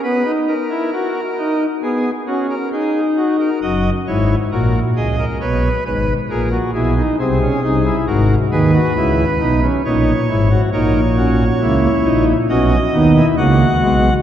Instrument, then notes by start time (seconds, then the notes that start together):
pipe organ
0.04 B3 B4
0.26 D#4
0.48 A#4
0.70 E4
0.93 F#4
1.38 D#4
1.83 B3 G#4
2.27 C#4 F#4
2.50 A#4
2.72 D#4 G#4
3.17 F#4
3.40 A#4
3.62 F#1 F#2 F#4 D#5
4.07 G#1 G#2 E4 C#5
4.52 A#1 A#2 F#4 A#4
4.96 C#2 C#3 G#4 D#5
5.19 A#4
5.41 B1 B2 B4 C#5
5.85 G#1 G#2 B4
6.30 A#1 A#2 G#4 A#4
6.51 F#4
6.74 B1 B2 E4 G#4
6.96 D#4
7.19 C2 C3 C4 G#4
7.41 C#4
7.63 C2 C3 D#4
7.85 E4
8.07 G#1 G#2 F#4 A#4
8.51 D#2 D#3 G#4 B4
8.74 F#4
8.96 C#2 C#3 E4
9.40 B1 B2 D#4
9.63 C#4
9.85 A#1 A#2 D#4 C#5
10.29 G#1 G#2 E4
10.51 F#4
10.73 A#1 A#2 D#4 A#4 C#5
11.17 C#4 F#4
11.61 C#2 C#3 A#3 E4
12.05 A#1 A#2 D#4
12.49 B1 B2 C#4 F#4 D#5
12.93 D#2 D#3 B3 D#4
13.16 E4
13.37 C#2 C#3 A#3 F#4 F#5
13.82 B1 B2 G#3